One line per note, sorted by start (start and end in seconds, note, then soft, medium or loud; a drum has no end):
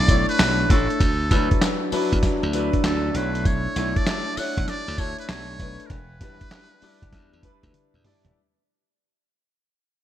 0.00 0.24 B1 medium
0.00 0.09 A3 medium
0.00 0.09 D4 medium
0.00 0.09 E4 medium
0.00 0.10 C#5 medium
0.00 0.29 D5 loud
0.00 1.02 D5 medium
0.08 0.57 A3 medium
0.08 0.57 D4 medium
0.08 0.57 E4 medium
0.08 0.58 C#5 medium
0.08 kick loud
0.08 closed hi-hat medium
0.08 tambourine medium
0.29 0.72 B4 loud
0.29 closed hi-hat soft
0.39 0.65 B1 medium
0.39 snare loud
0.39 clap medium
0.39 closed hi-hat medium
0.39 tambourine medium
0.70 0.87 A1 medium
0.70 1.00 A3 medium
0.70 1.00 D4 medium
0.70 1.01 E4 medium
0.70 1.93 A4 medium
0.70 1.01 C#5 medium
0.70 kick loud
0.70 closed hi-hat medium
0.90 closed hi-hat soft
1.00 1.26 D2 loud
1.00 kick loud
1.00 closed hi-hat medium
1.00 tambourine medium
1.31 1.48 D2 medium
1.31 1.79 F#3 medium
1.31 1.80 D4 medium
1.31 1.80 E4 medium
1.31 1.80 B4 loud
1.31 kick loud
1.31 closed hi-hat medium
1.31 tambourine medium
1.51 kick loud
1.51 closed hi-hat medium
1.61 snare loud
1.61 clap medium
1.61 closed hi-hat medium
1.61 tambourine medium
1.92 2.41 F#3 loud
1.92 2.41 D4 loud
1.92 2.41 E4 medium
1.92 2.41 B4 loud
1.92 muted slap bass stroke soft
1.92 open hi-hat medium
1.92 tambourine medium
2.13 2.21 E2 medium
2.13 kick loud
2.13 closed hi-hat medium
2.23 kick loud
2.23 snare medium
2.23 closed hi-hat medium
2.23 tambourine medium
2.43 2.69 D2 medium
2.53 3.02 F#3 loud
2.53 3.02 D4 medium
2.53 3.02 E4 medium
2.53 3.03 B4 loud
2.53 closed hi-hat medium
2.53 tambourine medium
2.73 kick medium
2.73 closed hi-hat medium
2.84 3.10 D2 loud
2.84 3.18 A4 medium
2.84 snare loud
2.84 clap medium
2.84 closed hi-hat medium
2.84 tambourine medium
3.14 3.66 B1 loud
3.14 3.68 A3 medium
3.14 3.68 D4 medium
3.14 3.68 E4 medium
3.14 3.48 B4 medium
3.14 3.68 C#5 medium
3.14 closed hi-hat medium
3.35 closed hi-hat medium
3.45 3.99 C#5 loud
3.45 kick loud
3.45 closed hi-hat medium
3.45 tambourine medium
3.76 3.93 B1 loud
3.76 4.24 A3 medium
3.76 4.25 D4 medium
3.76 4.25 E4 medium
3.76 4.25 C#5 medium
3.76 closed hi-hat medium
3.76 tambourine medium
3.96 4.40 D5 loud
3.96 kick loud
3.96 closed hi-hat medium
4.07 snare loud
4.07 clap medium
4.07 closed hi-hat medium
4.07 tambourine medium
4.37 4.86 A3 medium
4.37 4.86 D4 medium
4.37 4.86 E4 medium
4.37 4.86 C#5 medium
4.37 4.70 F#5 loud
4.37 muted slap bass stroke soft
4.37 open hi-hat medium
4.37 tambourine medium
4.57 4.66 B1 loud
4.57 kick loud
4.57 closed hi-hat medium
4.68 5.01 D5 loud
4.68 muted slap bass stroke medium
4.68 snare medium
4.68 closed hi-hat medium
4.68 tambourine medium
4.88 5.14 D2 medium
4.98 5.47 A3 medium
4.98 5.47 D4 medium
4.98 5.47 E4 medium
4.98 5.19 C#5 loud
4.98 5.48 C#5 medium
4.98 kick loud
4.98 closed hi-hat medium
4.98 tambourine medium
5.18 5.31 B4 medium
5.18 closed hi-hat soft
5.29 5.55 B1 medium
5.29 5.88 C#5 loud
5.29 snare loud
5.29 clap medium
5.29 closed hi-hat medium
5.29 tambourine medium
5.59 5.77 B1 medium
5.59 5.90 A3 medium
5.59 5.90 D4 medium
5.59 5.91 E4 medium
5.59 5.91 B4 medium
5.59 kick medium
5.59 closed hi-hat medium
5.80 closed hi-hat medium
5.86 6.16 E1 loud
5.86 5.92 A#4 medium
5.86 kick loud
5.86 closed hi-hat medium
5.91 7.74 B4 loud
6.21 6.38 E1 medium
6.21 6.69 G3 medium
6.21 6.70 D4 medium
6.21 6.70 E4 medium
6.21 6.70 B4 medium
6.21 kick medium
6.21 closed hi-hat medium
6.41 kick medium
6.41 closed hi-hat medium
6.51 snare loud
6.51 clap loud
6.51 closed hi-hat medium
6.82 7.31 G3 medium
6.82 7.31 D4 medium
6.82 7.31 E4 medium
6.82 7.31 D5 loud
6.82 muted slap bass stroke soft
6.82 open hi-hat medium
7.02 7.11 F#1 medium
7.02 kick loud
7.02 closed hi-hat medium
7.13 7.30 E2 loud
7.13 kick medium
7.13 snare medium
7.13 closed hi-hat medium
7.33 7.42 E2 medium
7.43 7.92 G3 loud
7.43 7.92 D4 medium
7.43 7.92 E4 medium
7.43 7.92 B4 loud
7.43 kick medium
7.43 closed hi-hat medium
7.63 7.72 D2 loud
7.63 kick medium
7.63 closed hi-hat medium
7.74 closed hi-hat medium
7.74 high tom medium
7.94 8.03 E2 medium
7.94 mid tom medium
8.04 8.35 G3 loud
8.04 8.35 D4 medium
8.04 8.35 E4 medium
8.04 8.36 D5 loud
8.04 mid tom loud
8.04 open hi-hat medium
8.25 8.34 D#1 medium
8.25 closed hi-hat medium
8.25 floor tom medium